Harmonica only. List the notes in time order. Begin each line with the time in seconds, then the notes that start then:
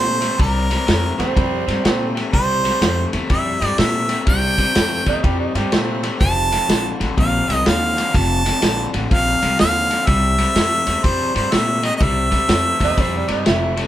Already playing: C5
0.41 A#4
2.34 C5
3.30 E5
3.79 E5
4.29 G5
6.21 A5
7.19 F5
7.67 F5
8.16 A5
9.11 F5
9.60 F5
10.06 E5
11.05 C5
11.36 C5
11.53 E5
11.84 D#5
11.96 D#5
12.02 E5